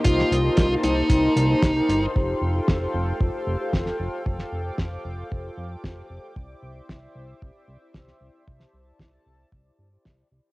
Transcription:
Already playing: A#3 D#5 C6
0.04 C2 D#4 F4 G4 A#4 C5 A5, kick, closed hi-hat
0.19 snare
0.31 C2, closed hi-hat
0.44 D#4 G4 A#4 C5
0.57 C2, kick, snare, closed hi-hat
0.71 D#4 G4 A#4 C5
0.83 C2 D#4, closed hi-hat
1.10 C2 D#4 G4 A#4 C5, kick, closed hi-hat
1.36 C2 D#4 G4 A#4 C5, closed hi-hat
1.49 D#4 G4 A#4 C5
1.63 C2, kick, snare, closed hi-hat
1.75 D#4 G4 A#4 C5
1.89 G1, closed hi-hat
2.15 F1 F4 G4 A4 C5 F5 G5, kick
2.42 F1
2.55 F4 G4 A4 C5
2.68 F1, kick, snare
2.81 F4 G4 A4 C5
2.94 F1
3.20 F1 F4 G4 A4 C5, kick
3.47 F1
3.60 F4 G4 A4 C5
3.73 F1, kick, snare
3.86 snare
4.00 F1 F4 G4 A4 C5
4.26 F1 F4 G4 A4 C5 D6, kick
4.39 snare
4.52 F1
4.65 F4 G4 A4 C5
4.78 F1, kick, snare
4.92 F4 G4 A4 C5
5.05 F1
5.31 F1 F4 G4 A4 C5, kick
5.58 F2
5.71 F4 G4 A4 C5
5.84 F1, kick, snare
6.10 F1 F4 G4 A4 C5
6.36 C2 E4 G4 C5 D5 E5, kick
6.63 C2
6.76 E4 G4 C5 D5
6.89 C2, kick, snare
7.02 E4 G4 C5 D5
7.15 C2
7.41 C2 E4 G4 C5 D5, kick
7.68 C2
7.81 E4 G4 C5 D5
7.94 C2, kick, snare
8.08 snare
8.21 C2 E4 G4 C5 D5
8.47 C2 E4 G4 C5 D5 A5, kick
8.60 snare
8.73 C2
8.86 E4 G4 C5 D5
8.99 C2, kick, snare
9.13 E4 G4 C5 D5
9.26 C2
9.52 C2 E4 G4 C5 D5, kick
9.78 G1
9.92 E4 G4 C5 D5
10.05 C2, kick, snare
10.31 C2 E4 G4 C5 D5

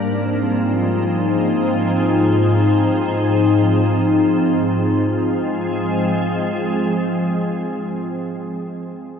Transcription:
Already playing: G#2 F3 A#3 A#4
0.00 C4
0.55 D#4
1.08 G#4
4.94 F3
5.08 G#3
5.19 C4
5.33 G#4

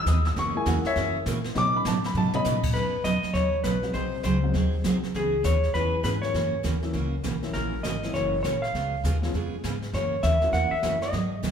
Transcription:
Already playing: F#3 G#3 D#4
0.06 D#2 E3 B3 D#4 G#4 D#6, snare, hi-hat pedal
0.25 E6, snare
0.36 F#2 C#3 E3 A#3 C#4 F#4 C#6, brush sweep, snare
0.55 G#3 A#3 E4 G#5
0.66 E2 C#3 E3 A#3 C#4 F#4 F#5, snare, hi-hat pedal
0.84 C#5 E5, muted upright bass stroke, snare
0.96 F#2 C#3 E3 A#3 C#4 F#4, brush sweep, snare
1.26 A#2 C#3 E3 A#3 C#4 F#4, snare, hi-hat pedal
1.44 snare
1.55 B2 C#3 F#3 B3 C#4 D#4 B4 D6, brush sweep, snare
1.76 B5
1.85 A2 B2 C#3 F#3 B3 D#4 B4 A5, snare, hi-hat pedal
2.04 B5, snare
2.14 G#2 B2 C#3 F#3 B3 D#4 B4 A5, mid tom
2.33 B3 C#4 D#4 D#5 B5, mid tom
2.44 A#2 B2 C#3 F#3 B3 D#4 B4, snare, hi-hat pedal
2.63 kick, crash
2.74 B2 C#3 F#3 B3 D#4 B4, brush sweep, snare
3.04 E2 B2 C#3 F#3 B3 D#4 B4 D#5, snare, hi-hat pedal
3.23 muted upright bass stroke, snare
3.34 D#2 B2 C#3 F#3 B3 D#4 B4 C#5, brush sweep, snare
3.64 B1 B2 C#3 F#3 B3 D#4 B4, snare, hi-hat pedal
3.82 F#3 G#3 C4 D#4 F#4, snare
3.93 C2 C3 F#3 C4 D#4 G#4 C5, brush sweep, snare
4.23 C#2 C3 F#3 C4 D#4 G#4 C5, snare, hi-hat pedal
4.43 F#3 G#3 C4 D#4 F#4
4.54 D#2 C3 F#3 C4 D#4 G#4 C5, brush sweep, snare
4.84 C2 C3 F#3 G#3 C4 D#4 F#4 G#4 C5, snare, hi-hat pedal
5.03 snare
5.14 C#2 C#3 E3 B3 C#4 G#4, brush sweep, snare
5.44 D#2 C#3 E3 B3 C#4 G#4 C#5, snare, hi-hat pedal
5.63 snare
5.74 E2 C#3 E3 G#3 B3 C#4 E4 G#4 B4, brush sweep, snare
6.03 G#2 C#3 E3 B3 C#4 G#4 B4, snare, hi-hat pedal
6.22 E3 F#3 A#3 C#4 E4 C#5, snare
6.34 F#2 C#3 E3 A#3 C#4 F#4, brush sweep, snare
6.63 D#2 C#3 E3 A#3 C#4 F#4, snare, hi-hat pedal
6.83 E3 F#3 A#3 C#4 E4, snare
6.93 C#2 C#3 E3 A#3 C#4 F#4, brush sweep, snare
7.24 B1 C#3 E3 A#3 C#4 F#4, snare, hi-hat pedal
7.42 E3 F#3 A#3 C#4 E4, snare
7.53 A#1 C#3 E3 A#3 C#4 F#4 A#4, brush sweep, snare
7.83 G#1 C#3 E3 A#3 C#4 F#4 D#5, snare, hi-hat pedal
8.03 E3 F#3 A#3 C#4 E4, snare
8.14 F#1 C#3 E3 A#3 C#4 F#4 C#5, brush sweep, snare
8.43 A#1 C#3 E3 A#3 C#4 F#4 C#5, snare, hi-hat pedal
8.62 F5, snare
8.74 C#2 C#3 G#3 B3 F4 G#4, brush sweep, snare
9.04 D#2 C#3 G#3 B3 F4 G#4, snare, hi-hat pedal
9.22 F3 G#3 B3 C#4 F4, snare
9.34 F2 C#3 G#3 B3 F4 G#4, brush sweep, snare
9.64 G#2 C#3 G#3 B3 F4 G#4, snare, hi-hat pedal
9.82 snare
9.93 F#2 C#3 E3 A#3 C#4 F#4 C#5, brush sweep, snare
10.23 D#2 C#3 E3 A#3 C#4 F#4 E5, snare, hi-hat pedal
10.41 F#3 A#3 C#4 E4 F#4, snare
10.52 E2 C#3 E3 A#3 C#4 F#4 F#5, brush sweep, snare
10.71 E5, muted upright bass stroke
10.83 F#2 C#3 E3 F#3 A#3 C#4 E4 F#4, snare, hi-hat pedal
11.01 D#5, snare
11.13 G#2 D#3 F#3 B3 D#4 G#4, brush sweep, snare
11.42 C#2 D#3 F#3 B3 D#4 G#4, snare, hi-hat pedal

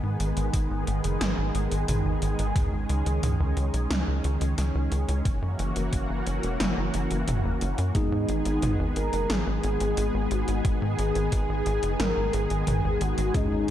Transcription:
Already playing: D#3 G#3 B3 G#4
0.03 G#2
0.20 G#1, closed hi-hat
0.37 G#1, closed hi-hat
0.53 G#1, kick, closed hi-hat
0.71 G#1
0.87 G#1, closed hi-hat
1.04 F#1, closed hi-hat
1.21 G#1, snare, closed hi-hat
1.38 G#1
1.55 G#1, closed hi-hat
1.72 G#1, closed hi-hat
1.88 G#1, closed hi-hat, mid tom
2.05 G#1
2.22 G#1, closed hi-hat
2.39 G#1, closed hi-hat
2.56 C#2 C#4, kick, closed hi-hat, mid tom
2.73 G#1
2.89 C#2, closed hi-hat
3.06 C#2, closed hi-hat
3.23 C#2, closed hi-hat, mid tom
3.40 C#2
3.57 C#2, closed hi-hat
3.74 B1, closed hi-hat
3.91 C#2, snare, closed hi-hat
4.08 C#2
4.24 C#2, closed hi-hat
4.41 C#2, closed hi-hat
4.58 C#2, snare, closed hi-hat
4.75 C#2
4.92 C#2, closed hi-hat
5.08 C#2, closed hi-hat
5.25 F#1 E3 A#3 F#4, kick, closed hi-hat
5.42 F#2
5.59 F#1, closed hi-hat
5.76 F#1, closed hi-hat
5.93 F#1, kick, closed hi-hat
6.09 F#1
6.26 F#1, closed hi-hat
6.43 E1, closed hi-hat
6.60 F#1, snare, closed hi-hat
6.77 F#1
6.94 F#1, closed hi-hat
7.11 F#1, closed hi-hat
7.28 F#1, closed hi-hat, mid tom
7.45 F#1
7.61 F#1, closed hi-hat
7.78 F#2, closed hi-hat
7.95 G#1 D#3 G#3 B3 D#4 G#4, kick, closed hi-hat, mid tom
8.12 G#2
8.29 G#1, closed hi-hat
8.45 G#1, closed hi-hat
8.62 G#1, closed hi-hat, mid tom
8.79 G#1
8.96 G#1 A#4, closed hi-hat
9.13 F#1, closed hi-hat
9.30 G#1 G#4, snare, closed hi-hat
9.47 G#1
9.63 G#1, closed hi-hat
9.80 G#1, closed hi-hat
9.97 G#1, closed hi-hat
10.14 G#1
10.31 G#1 F#4, closed hi-hat
10.48 G#1, closed hi-hat
10.65 G#1 G#4, kick, closed hi-hat
10.82 G#2
10.99 G#1, closed hi-hat
11.15 G#1, closed hi-hat
11.32 G#1 G#4, kick, closed hi-hat
11.49 G#1
11.66 G#1, closed hi-hat
11.83 F#1, closed hi-hat
12.00 G#1 A#4, snare, closed hi-hat
12.17 G#1
12.33 G#1 G#4, closed hi-hat
12.50 G#1, closed hi-hat
12.67 G#1, closed hi-hat, mid tom
12.84 G#1
13.01 G#1 F#4, closed hi-hat
13.18 G#1, closed hi-hat
13.34 C#2 G#3 C#4 D#4 G#4, kick, closed hi-hat, mid tom
13.52 G#1

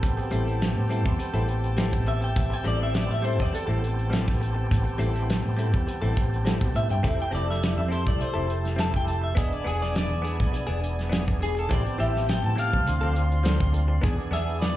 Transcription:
Already playing: B3 C4 G4 A4 G5 A5
0.03 A1, kick, closed hi-hat
0.17 muted clean electric guitar stroke, closed hi-hat
0.31 A1 G3 C4 E4 A4, closed hi-hat
0.46 C4 E4 A4, closed hi-hat
0.62 snare, closed hi-hat
0.75 A2, muted clean electric guitar stroke
0.89 G3 C4 E4 A4, closed hi-hat
1.04 E2, muted clean electric guitar stroke, kick
1.18 muted clean electric guitar stroke, closed hi-hat
1.34 A1 G3 C4 E4 A4, closed hi-hat
1.48 muted clean electric guitar stroke, closed hi-hat
1.64 closed hi-hat
1.77 G3 C4 E4 A4, snare, closed hi-hat
1.92 muted clean electric guitar stroke, kick, closed hi-hat
2.06 E5, muted clean electric guitar stroke, closed hi-hat
2.21 G5, muted clean electric guitar stroke, closed hi-hat
2.35 A1 B3 C4 G4 E5, kick, closed hi-hat
2.50 G5, muted clean electric guitar stroke, closed hi-hat
2.64 A1 G3 C4 E4 A4 D5, closed hi-hat
2.79 C4 E4 A4
2.83 E5
2.94 D5, snare, closed hi-hat
3.09 A2 E5, muted clean electric guitar stroke
3.22 G3 C4 E4 A4 C5, closed hi-hat
3.38 E2 D5, muted clean electric guitar stroke, kick
3.52 A4, muted clean electric guitar stroke, closed hi-hat
3.67 A1 G3 C4 E4 A4
3.81 muted clean electric guitar stroke, closed hi-hat
3.99 closed hi-hat
4.10 G3 C4 E4 A4, snare, closed hi-hat
4.26 muted clean electric guitar stroke, kick, snare
4.40 muted clean electric guitar stroke, closed hi-hat
4.55 muted clean electric guitar stroke
4.71 A1, kick, closed hi-hat
4.84 muted clean electric guitar stroke, closed hi-hat
4.98 A1 G3 C4 E4 A4, closed hi-hat
5.13 C4 E4 A4, closed hi-hat
5.30 snare, closed hi-hat
5.42 A2, muted clean electric guitar stroke
5.57 G3 C4 E4 A4, closed hi-hat
5.72 E2, muted clean electric guitar stroke, kick
5.86 muted clean electric guitar stroke, closed hi-hat
6.02 A1 G3 C4 E4 A4, closed hi-hat
6.16 muted clean electric guitar stroke, kick, closed hi-hat
6.33 closed hi-hat
6.45 G3 C4 E4 A4, snare, closed hi-hat
6.60 B2, muted clean electric guitar stroke, kick, closed hi-hat
6.75 A2 E5, muted clean electric guitar stroke, closed hi-hat
6.90 G2 G5, muted clean electric guitar stroke, closed hi-hat
7.03 F1 A3 C4 E4 G4 A4 C5 E5 A5, kick, closed hi-hat
7.18 G5, muted clean electric guitar stroke, closed hi-hat
7.31 F1 C4 E4 A4 D5, closed hi-hat
7.46 E4 A4
7.50 E5, snare
7.63 D5, snare, closed hi-hat
7.75 F2 E5, muted clean electric guitar stroke
7.88 C4 E4 A4 C5, closed hi-hat
8.05 C2 D5, muted clean electric guitar stroke, kick
8.19 C5, muted clean electric guitar stroke, closed hi-hat
8.34 F1 C4 E4 A4
8.47 muted clean electric guitar stroke, closed hi-hat
8.65 snare, closed hi-hat
8.76 C4 E4 A4 A5, snare, closed hi-hat
8.92 muted clean electric guitar stroke, kick
8.96 G5
9.06 A5, muted clean electric guitar stroke, closed hi-hat
9.22 E5, muted clean electric guitar stroke
9.35 E1 B3 D4 G#4 D5 D#5 G#5, kick, closed hi-hat
9.51 D5, muted clean electric guitar stroke, closed hi-hat
9.64 E1 B3 D4 G#4, closed hi-hat
9.79 D4 G#4 D5, snare, closed hi-hat
9.96 D5, snare, closed hi-hat
10.09 E2, muted clean electric guitar stroke
10.22 B3 D4 G#4, closed hi-hat
10.37 B1, muted clean electric guitar stroke, kick
10.52 muted clean electric guitar stroke, closed hi-hat
10.67 E1 B3 D4 G#4, closed hi-hat
10.80 muted clean electric guitar stroke, closed hi-hat
10.99 snare, closed hi-hat
11.09 B3 D4 G#4, snare, closed hi-hat
11.25 muted clean electric guitar stroke, kick, closed hi-hat
11.40 G#4, muted clean electric guitar stroke, closed hi-hat
11.55 A4, muted clean electric guitar stroke, closed hi-hat
11.69 A1 E3 B3 C4 E4 G4 A4 G5 A5, kick, closed hi-hat
11.73 D5
11.85 muted clean electric guitar stroke, closed hi-hat
11.98 A1 E3 C4 E4 G4 E5, closed hi-hat
12.13 C4 E4 G4, snare
12.29 G5, snare, closed hi-hat
12.42 A2 A5, muted clean electric guitar stroke
12.56 E3 C4 E4 G4 F5, closed hi-hat
12.72 C2, muted clean electric guitar stroke, kick
12.86 D2 C4 D4 F4 D5 F5 C6, muted clean electric guitar stroke, closed hi-hat
13.01 D2 F3 C4 D4 A4
13.15 muted clean electric guitar stroke, closed hi-hat
13.32 closed hi-hat
13.44 F3 C4 D4 A4, snare, closed hi-hat
13.59 muted clean electric guitar stroke, kick
13.73 muted clean electric guitar stroke, closed hi-hat
13.88 muted clean electric guitar stroke
14.01 E2 B3 D4 G#4 E5 G#5, kick, closed hi-hat
14.18 muted clean electric guitar stroke, closed hi-hat
14.31 E2 B3 D4 G#4 E5, snare, closed hi-hat
14.46 D4 G#4, closed hi-hat
14.62 D5, snare, closed hi-hat

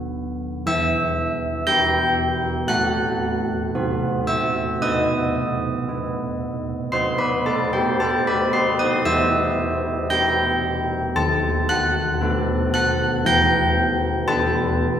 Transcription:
Already playing: D#3 B3 F#4 F#5 F#6
0.66 E3 E5 E6
1.67 B3 G4 G5 G6
2.68 A3 F#5 F#6
3.75 C4 F#4
4.27 E5 E6
4.82 B3 D#5 D#6
5.89 B3
6.92 B3 F#4 C5 C6
7.18 B4 B5
7.46 A4 A5
7.73 G4 G5
8.00 A4 A5
8.27 B4 B5
8.53 C5 C6
8.79 D#5 D#6
9.05 E3 E5 E6
10.10 B3 G4 G5 G6
11.16 D#3 A5
11.69 F#5 F#6
12.21 B3 A4
12.74 F#5 F#6
13.25 E3 G5 G6
14.28 B3 B4 A5

